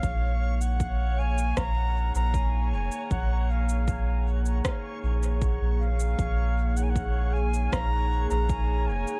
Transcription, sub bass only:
\new Staff \with { instrumentName = "Sub bass" } { \clef bass \time 4/4 \key bes \minor \tempo 4 = 78 bes,,2 bes,,8. bes,,8. f,,16 r16 | bes,,2 r8 bes,,8. bes,,8. | bes,,2 bes,,8. bes,,8. f,,16 r16 | }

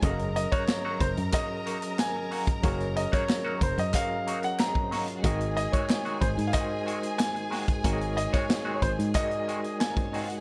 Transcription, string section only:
\new Staff \with { instrumentName = "String section" } { \time 4/4 \key ges \lydian \tempo 4 = 92 <bes' bes''>1~ | <bes' bes''>2. r32 <aes aes'>32 <bes bes'>32 <c' c''>32 <des' des''>32 <ees' ees''>32 <f' f''>32 <ges' ges''>32 | <aes' aes''>1~ | <aes' aes''>2. r32 <bes bes'>32 <c' c''>32 <des' des''>32 <ees' ees''>32 <f' f''>32 <ges' ges''>32 <aes' aes''>32 | }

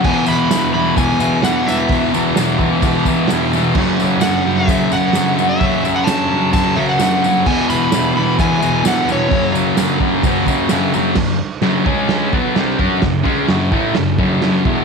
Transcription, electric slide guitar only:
\new Staff \with { instrumentName = "Electric slide guitar" } { \time 4/4 \key fis \minor \tempo 4 = 130 gis''8 b''4 b''8 gis''4 fis''8 e''8~ | e''8 r2. r8 | r4 fis''8. e''8. fis''4~ fis''16 e''16~ | e''8. fis''16 a''4 a''8 e''16 fis''4~ fis''16 |
gis''8 b''4 b''8 gis''4 fis''8 cis''8~ | cis''8 r2. r8 | r1 | r1 | }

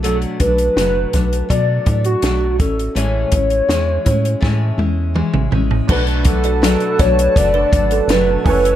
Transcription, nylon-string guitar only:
\new Staff \with { instrumentName = "Nylon-string guitar" } { \time 4/4 \key b \dorian \tempo 4 = 82 <b, fis a d'>8 <fis a d'>8 <b, fis a d'>8 <fis a d'>8 <b, fis a d'>8 <fis a d'>8 <b, fis a d'>8 <cis' e'>8 | <a, e gis cis' e'>8 <gis cis' e'>8 <e gis cis' e'>8 <gis cis' e'>8 <a, e gis cis' e'>8 <gis cis' e'>8 <e gis cis' e'>8 <gis cis' e'>8 | <b, fis a d'>8 <fis a d'>8 <b, fis a d'>8 <fis a d'>8 <b, fis a d'>8 <fis a d'>8 <b, fis a d'>8 <e a cis'>8 | }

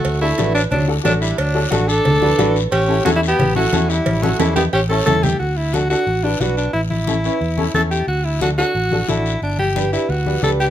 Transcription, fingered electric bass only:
\new Staff \with { instrumentName = "Fingered electric bass" } { \clef bass \time 4/4 \key d \major \tempo 4 = 179 d,4 a,,4 d,4 a,,4 | d,4 a,,4 d,4 a,,4 | a,,4 e,4 a,,4 e,4 | a,,4 e,4 a,,4 e,4 |
d,2 a,,4 b,,4 | a,,2 e,4 e,4 | d,2 a,,4 a,,4 | g,,2 d,4 cis,4 | }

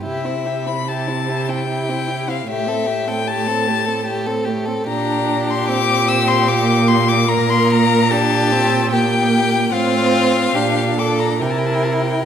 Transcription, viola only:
\new Staff \with { instrumentName = "Viola" } { \time 3/4 \key a \minor \tempo 4 = 74 e'16 c'16 e'16 c'16 e'16 c'16 e'16 c'16 e'16 c'16 e'16 c'16 | a16 c'16 a16 c'16 a16 c'16 a16 c'16 a16 c'16 a16 c'16 | \key g \dorian d'4 c'4 bes4 | bes4 d'8 c'8 bes4 |
c'4 d'4 e'4 | }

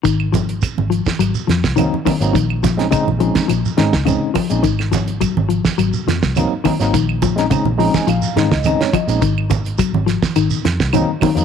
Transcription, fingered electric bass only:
\new Staff \with { instrumentName = "Fingered electric bass" } { \clef bass \time 4/4 \key aes \mixolydian \tempo 4 = 105 aes,,4~ aes,,16 aes,,8 r16 aes,,16 r16 f,16 c,8 r8 aes,,16 | bes,,4~ bes,,16 bes,,8 r16 bes,,16 r16 aes,16 des,8 r8 bes,,16 | aes,,4~ aes,,16 aes,,8 r16 aes,,16 r16 f,16 c,8 r8 aes,,16 | bes,,4~ bes,,16 bes,,8 r16 bes,,16 r16 aes,16 des,8 r8 bes,,16 |
aes,,4~ aes,,16 aes,,8 r16 aes,,16 r16 f,16 c,8 r8 f,16 | }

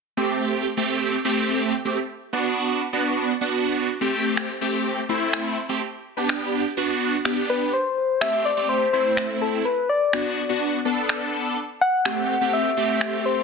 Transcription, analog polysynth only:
\new Staff \with { instrumentName = "Analog polysynth" } { \time 4/4 \key a \dorian \tempo 4 = 125 r16 <a c' g'>4 r16 <a c' g'>8. r16 <a c' g'>4 r16 <a c' g'>16 | r8. <b d' fis'>4 r16 <b d' fis'>8. r16 <b d' fis'>4 | r16 <a c' g'>4 r16 <a c' g'>8. r16 <a c' e'>4 r16 <a c' g'>16 | r8. <b d' g'>4 r16 <b d' fis'>8. r16 <b d' g'>4 |
r4 <a c' g'>8 r16 <a c' g'>8 r16 <a c' e'>4. | r4 <b d' fis'>8 r16 <b d' fis'>8 r16 <b d' a'>4. | r4 <a c' g'>8 r16 <a c' g'>8 r16 <a c' g'>4. | }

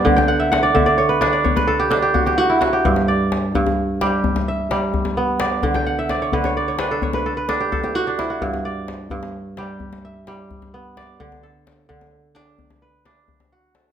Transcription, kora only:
<<
  \new Staff \with { instrumentName = "Kora" } { \time 12/8 \key g \lydian \tempo 4. = 86 << { d''8 r1 r4. | r8 d''4. r8 g'4 e''4. r8 d''8~ | d''8 r1 r4. | r8 d''4. r8 g'4 e''4. r8 d''8~ |
d''8 a'4. r8 d'4 b'4. r8 a'8 | } \\ { r16 g''16 fis''16 e''16 fis''16 d''16 e''16 d''16 cis''16 b'16 cis''16 d''16 cis''16 b'16 a'16 g'16 a'16 g'16 fis'16 g'16 fis'16 e'16 fis'16 g'16~ | g'16 r1 r4. r16 | r16 g''16 fis''16 e''16 d''16 cis''16 b'16 cis''16 d''16 cis''16 b'16 a'16 cis''16 b'16 a'16 b'16 a'16 g'16 a'16 g'16 fis'16 d'16 e'16 fis'16~ | fis'16 r1 r4. r16 |
r1. | } >> }
  \new Staff \with { instrumentName = "Kora" } { \clef bass \time 12/8 \key g \lydian d4 r8 d4 d'4 r8 d'4 fis'4 | g,4 r8 g,4 g4 r8 g4 b4 | d4 r8 d4 d'4 r8 d'4 fis'4 | g,4 r8 g,4 g4 r8 g4 b4 |
d4 r8 d4 d'4 r8 d'4 fis'4 | }
>>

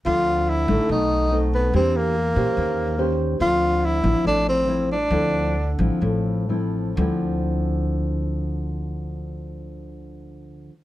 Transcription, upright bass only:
\new Staff \with { instrumentName = "Upright bass" } { \clef bass \time 4/4 \key d \minor \tempo 4 = 136 d,4. a,,16 r16 b,,2 | e,4. bes,16 r16 ees,2 | d,4. a,,16 r16 a,,2 | d,4. a,,16 r16 a,,2 |
d,1~ | d,1 | }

